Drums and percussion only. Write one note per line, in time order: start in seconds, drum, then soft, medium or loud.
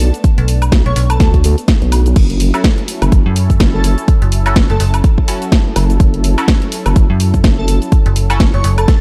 0.00 open hi-hat loud
0.00 cabasa medium
0.14 closed hi-hat soft
0.14 cabasa soft
0.24 kick loud
0.24 closed hi-hat medium
0.24 cabasa soft
0.38 closed hi-hat medium
0.48 open hi-hat loud
0.48 cabasa medium
0.62 closed hi-hat soft
0.62 cabasa soft
0.62 high woodblock medium
0.72 kick loud
0.72 snare loud
0.72 closed hi-hat medium
0.72 cabasa soft
0.86 closed hi-hat soft
0.96 open hi-hat loud
0.96 cabasa medium
1.10 closed hi-hat medium
1.10 cabasa soft
1.10 high woodblock medium
1.20 kick loud
1.20 snare medium
1.20 closed hi-hat medium
1.20 cabasa soft
1.34 kick medium
1.34 closed hi-hat soft
1.44 open hi-hat loud
1.44 cabasa medium
1.58 closed hi-hat soft
1.58 cabasa soft
1.68 kick loud
1.68 snare loud
1.68 closed hi-hat medium
1.68 cabasa soft
1.82 closed hi-hat soft
1.92 open hi-hat loud
1.92 cabasa medium
1.92 high woodblock medium
2.06 closed hi-hat soft
2.06 cabasa soft
2.16 kick loud
2.16 closed hi-hat medium
2.16 crash medium
2.16 cabasa soft
2.30 closed hi-hat medium
2.40 open hi-hat loud
2.40 cabasa medium
2.54 closed hi-hat soft
2.54 cabasa soft
2.54 high woodblock medium
2.64 kick loud
2.64 snare loud
2.64 closed hi-hat medium
2.64 cabasa soft
2.78 closed hi-hat soft
2.88 open hi-hat loud
2.88 cabasa medium
3.02 closed hi-hat medium
3.02 cabasa soft
3.02 high woodblock medium
3.12 kick loud
3.12 closed hi-hat medium
3.12 cabasa soft
3.36 open hi-hat loud
3.36 cabasa medium
3.50 kick medium
3.50 closed hi-hat soft
3.50 cabasa soft
3.60 kick loud
3.60 snare loud
3.60 closed hi-hat medium
3.60 cabasa soft
3.84 open hi-hat loud
3.84 cabasa medium
3.98 closed hi-hat soft
3.98 cabasa soft
4.08 kick loud
4.08 closed hi-hat medium
4.08 cabasa soft
4.22 closed hi-hat medium
4.32 open hi-hat loud
4.32 cabasa medium
4.46 closed hi-hat soft
4.46 cabasa soft
4.46 high woodblock medium
4.56 kick loud
4.56 snare loud
4.56 closed hi-hat medium
4.56 cabasa soft
4.70 closed hi-hat soft
4.80 open hi-hat loud
4.80 cabasa medium
4.94 closed hi-hat medium
4.94 cabasa soft
4.94 high woodblock medium
5.04 kick loud
5.04 closed hi-hat medium
5.04 cabasa soft
5.18 kick medium
5.28 open hi-hat loud
5.28 cabasa medium
5.42 closed hi-hat soft
5.42 cabasa soft
5.52 kick loud
5.52 snare loud
5.52 closed hi-hat medium
5.52 cabasa soft
5.76 open hi-hat loud
5.76 cabasa medium
5.76 high woodblock medium
5.90 closed hi-hat soft
5.90 cabasa soft
6.00 kick loud
6.00 closed hi-hat medium
6.00 cabasa soft
6.14 closed hi-hat medium
6.24 open hi-hat loud
6.24 cabasa medium
6.38 closed hi-hat soft
6.38 cabasa soft
6.38 high woodblock medium
6.48 kick loud
6.48 snare loud
6.48 closed hi-hat medium
6.48 cabasa soft
6.62 closed hi-hat soft
6.72 open hi-hat loud
6.72 cabasa medium
6.86 closed hi-hat medium
6.86 cabasa soft
6.86 high woodblock medium
6.96 kick loud
6.96 closed hi-hat medium
6.96 cabasa soft
7.20 open hi-hat loud
7.20 cabasa medium
7.34 kick medium
7.34 closed hi-hat soft
7.34 cabasa soft
7.44 kick loud
7.44 snare loud
7.44 closed hi-hat medium
7.44 cabasa soft
7.68 open hi-hat loud
7.68 cabasa medium
7.82 closed hi-hat soft
7.82 cabasa soft
7.92 kick loud
7.92 closed hi-hat medium
7.92 cabasa soft
8.06 closed hi-hat medium
8.16 open hi-hat loud
8.16 cabasa medium
8.30 closed hi-hat soft
8.30 cabasa soft
8.30 high woodblock medium
8.40 kick loud
8.40 snare loud
8.40 closed hi-hat medium
8.40 cabasa soft
8.54 closed hi-hat soft
8.64 open hi-hat loud
8.64 cabasa medium
8.78 closed hi-hat medium
8.78 cabasa soft
8.78 high woodblock medium
8.88 kick loud
8.88 snare medium
8.88 closed hi-hat medium
8.88 cabasa soft